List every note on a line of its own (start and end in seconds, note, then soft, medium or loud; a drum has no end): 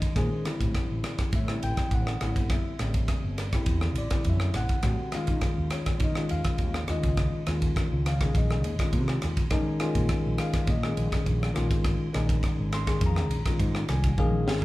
0.00 0.14 D#5 medium
0.00 kick medium
0.00 ride medium
0.15 0.28 A#2 medium
0.15 0.45 D#3 medium
0.15 0.46 G#3 medium
0.15 0.46 C#4 medium
0.15 0.46 G#4 medium
0.15 1.02 C5 medium
0.15 kick loud
0.15 cross-stick medium
0.15 ride medium
0.45 1.37 D3 medium
0.45 1.38 G3 medium
0.45 1.38 C4 medium
0.45 1.38 E4 medium
0.45 muted fretless electric bass stroke soft
0.45 cross-stick medium
0.45 ride medium
0.61 0.72 A2 medium
0.61 kick medium
0.61 ride medium
0.74 muted fretless electric bass stroke soft
0.74 kick medium
0.74 cross-stick medium
0.74 ride medium
0.91 1.02 A1 medium
1.04 cross-stick medium
1.04 ride medium
1.18 muted fretless electric bass stroke soft
1.18 kick medium
1.18 cross-stick medium
1.18 ride medium
1.33 1.57 A2 medium
1.33 1.63 E5 medium
1.33 kick loud
1.33 ride medium
1.47 2.13 D3 medium
1.47 2.14 G3 medium
1.47 2.14 C4 medium
1.47 2.14 E4 medium
1.47 cross-stick medium
1.63 1.75 A1 medium
1.63 1.92 G5 loud
1.63 ride medium
1.77 kick medium
1.77 cross-stick medium
1.77 ride medium
1.91 2.15 A1 loud
1.91 2.48 F#5 medium
1.91 kick medium
1.91 ride medium
2.07 cross-stick medium
2.21 2.36 A1 medium
2.21 2.74 D3 medium
2.21 2.74 G3 medium
2.21 2.75 C4 medium
2.21 2.75 E4 medium
2.21 cross-stick medium
2.21 ride medium
2.36 2.60 G1 medium
2.36 kick medium
2.36 ride medium
2.50 3.36 E5 medium
2.50 kick loud
2.50 cross-stick medium
2.50 ride medium
2.79 3.03 A1 medium
2.79 3.45 D3 medium
2.79 3.46 G3 medium
2.79 3.46 C4 medium
2.79 3.46 D4 medium
2.79 cross-stick medium
2.79 ride medium
2.94 kick medium
2.94 ride medium
3.08 kick medium
3.08 cross-stick medium
3.08 ride medium
3.24 3.59 G1 medium
3.38 cross-stick medium
3.38 ride medium
3.53 4.05 D3 medium
3.53 4.06 G3 medium
3.53 4.06 C4 medium
3.53 4.06 E4 medium
3.53 kick medium
3.53 cross-stick medium
3.53 ride medium
3.66 3.96 E2 medium
3.66 kick loud
3.66 ride medium
3.81 cross-stick medium
3.95 4.09 A1 medium
3.95 4.26 D5 medium
3.95 ride medium
4.10 4.77 D3 medium
4.10 4.77 G3 medium
4.10 4.77 C4 medium
4.10 4.77 E4 medium
4.10 muted fretless electric bass stroke soft
4.10 kick medium
4.10 cross-stick medium
4.10 ride medium
4.24 4.49 F#2 medium
4.24 kick medium
4.24 ride medium
4.29 4.56 E5 medium
4.40 cross-stick medium
4.54 4.67 A1 medium
4.54 5.10 F#5 medium
4.54 cross-stick medium
4.54 ride medium
4.69 kick medium
4.69 ride medium
4.83 4.96 A2 medium
4.83 5.13 D3 medium
4.83 5.14 G3 medium
4.83 5.14 C4 medium
4.83 5.14 F#4 medium
4.83 kick loud
4.83 cross-stick medium
4.83 ride medium
5.12 6.05 D#3 medium
5.12 6.06 G#3 medium
5.12 6.06 C#4 medium
5.12 6.06 F4 medium
5.12 5.69 F5 medium
5.12 muted fretless electric bass stroke soft
5.12 cross-stick medium
5.12 ride medium
5.27 5.40 D#3 medium
5.27 kick medium
5.27 ride medium
5.41 kick medium
5.41 cross-stick medium
5.41 ride medium
5.58 5.69 D#2 medium
5.70 6.01 C#5 medium
5.70 cross-stick medium
5.70 ride medium
5.86 muted fretless electric bass stroke soft
5.86 kick medium
5.86 cross-stick medium
5.86 ride medium
6.00 6.24 D#3 medium
6.00 kick loud
6.00 ride medium
6.04 6.31 D#5 medium
6.15 6.81 D#3 medium
6.15 6.81 G#3 medium
6.15 6.82 C#4 medium
6.15 6.82 F4 medium
6.15 cross-stick medium
6.29 6.43 D#2 medium
6.29 6.85 F5 medium
6.29 ride medium
6.44 muted fretless electric bass stroke soft
6.44 kick medium
6.44 cross-stick medium
6.44 ride medium
6.58 6.83 D#2 medium
6.58 kick medium
6.58 ride medium
6.74 cross-stick medium
6.88 7.04 D#2 medium
6.88 7.41 D#3 medium
6.88 7.42 G#3 medium
6.88 7.42 C#4 medium
6.88 7.42 F4 medium
6.88 7.44 D#5 medium
6.88 cross-stick medium
6.88 ride medium
7.03 7.27 C#2 medium
7.03 kick medium
7.03 ride medium
7.17 kick loud
7.17 cross-stick medium
7.17 ride medium
7.47 7.71 D#2 medium
7.47 8.13 D#3 medium
7.47 8.13 G#3 medium
7.47 8.13 C#4 medium
7.47 8.13 F4 medium
7.47 cross-stick medium
7.47 ride medium
7.62 kick medium
7.62 ride medium
7.76 kick medium
7.76 cross-stick medium
7.76 ride medium
7.92 8.26 C#2 medium
8.06 8.34 F5 medium
8.06 cross-stick medium
8.06 ride medium
8.21 8.73 D#3 medium
8.21 8.73 G#3 medium
8.21 8.73 C#4 medium
8.21 8.73 G#4 medium
8.21 kick medium
8.21 cross-stick medium
8.21 ride medium
8.35 8.65 A#1 medium
8.35 8.90 D#5 medium
8.35 kick loud
8.35 ride medium
8.51 cross-stick medium
8.64 8.77 D#2 medium
8.64 ride medium
8.79 9.44 D#3 medium
8.79 9.44 G#3 medium
8.79 9.45 C#4 medium
8.79 9.45 F4 medium
8.79 muted fretless electric bass stroke soft
8.79 kick medium
8.79 cross-stick medium
8.79 ride medium
8.93 9.17 C3 loud
8.93 kick medium
8.93 ride medium
9.08 cross-stick medium
9.22 9.35 D#2 medium
9.22 cross-stick medium
9.22 ride medium
9.37 muted fretless electric bass stroke soft
9.37 kick medium
9.37 ride medium
9.50 9.79 D#3 loud
9.50 9.63 D#3 medium
9.50 9.79 G#3 medium
9.50 9.79 C#4 medium
9.50 9.81 D#4 loud
9.50 kick loud
9.50 cross-stick medium
9.50 ride medium
9.80 10.72 D#3 medium
9.80 10.72 G#3 medium
9.80 10.72 C#4 medium
9.80 10.72 F4 loud
9.80 muted fretless electric bass stroke soft
9.80 cross-stick medium
9.80 ride medium
9.95 10.07 A#2 medium
9.95 kick medium
9.95 ride medium
10.09 muted fretless electric bass stroke soft
10.09 kick medium
10.09 cross-stick medium
10.09 ride medium
10.26 10.37 A#1 medium
10.38 10.68 F5 medium
10.38 cross-stick medium
10.38 ride medium
10.53 muted fretless electric bass stroke soft
10.53 kick medium
10.53 cross-stick medium
10.53 ride medium
10.67 10.91 A#2 medium
10.67 11.23 D#5 medium
10.67 kick loud
10.67 ride medium
10.83 11.48 D#3 medium
10.83 11.49 G#3 medium
10.83 11.49 C#4 medium
10.83 11.49 G#4 medium
10.83 cross-stick medium
10.97 11.09 A#1 loud
10.97 ride medium
11.12 kick medium
11.12 cross-stick medium
11.12 ride medium
11.26 11.50 A#1 medium
11.26 kick medium
11.26 ride medium
11.43 cross-stick medium
11.54 11.71 A#1 medium
11.54 12.07 D#3 medium
11.54 12.08 G#3 medium
11.54 12.08 C#4 medium
11.54 12.08 F4 loud
11.54 cross-stick medium
11.54 ride medium
11.71 11.94 G#1 medium
11.71 kick medium
11.71 ride medium
11.84 kick loud
11.84 cross-stick medium
11.84 ride medium
12.13 12.38 A#1 medium
12.13 12.79 D#3 medium
12.13 12.79 G#3 medium
12.13 12.80 C#4 medium
12.13 12.80 D#4 loud
12.13 cross-stick medium
12.13 ride medium
12.29 kick medium
12.29 ride medium
12.43 kick medium
12.43 cross-stick medium
12.43 ride medium
12.59 12.93 G#1 medium
12.72 13.02 C6 loud
12.72 cross-stick medium
12.72 ride medium
12.86 13.39 D#3 medium
12.86 13.39 G#3 medium
12.86 13.39 C#4 medium
12.86 13.40 G#4 medium
12.86 kick medium
12.86 cross-stick medium
12.86 ride medium
13.01 13.31 F2 medium
13.01 kick loud
13.01 ride medium
13.06 13.58 A#5 medium
13.16 cross-stick medium
13.31 13.43 A#1 medium
13.31 ride medium
13.45 14.11 D#3 medium
13.45 14.11 G#3 medium
13.45 14.11 C#4 medium
13.45 14.12 F4 medium
13.45 kick medium
13.45 cross-stick medium
13.45 ride medium
13.60 13.83 G#2 loud
13.60 kick medium
13.60 ride medium
13.75 cross-stick medium
13.89 14.15 C2 medium
13.89 14.16 G#5 medium
13.89 cross-stick medium
13.89 ride medium
14.04 kick medium
14.04 ride medium
14.18 14.44 A#1 medium
14.18 14.65 D#3 loud
14.18 14.65 G#3 medium
14.18 14.65 C#4 loud
14.18 14.65 G#4 loud
14.18 14.45 F5 medium
14.18 kick loud
14.18 high tom medium
14.47 14.65 G#1 medium
14.47 14.65 C#5 medium
14.47 snare medium